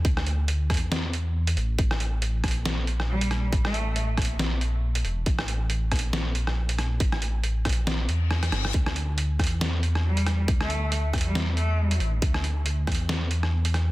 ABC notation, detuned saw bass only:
X:1
M:4/4
L:1/8
Q:"Swing 16ths" 1/4=138
K:Aphr
V:1 name="Detuned saw bass" clef=bass
D,,3 E,,4 A,,, | z3 B,,,4- B,,, | A,,,3 B,,,4 E,,, | A,,,3 B,,,4- B,,, |
A,,,3 B,,,2 E,,2 G,,, | D,,3 E,,4- E,, | z3 E,,4 A,,, | D,,3 E,,4- E,, |]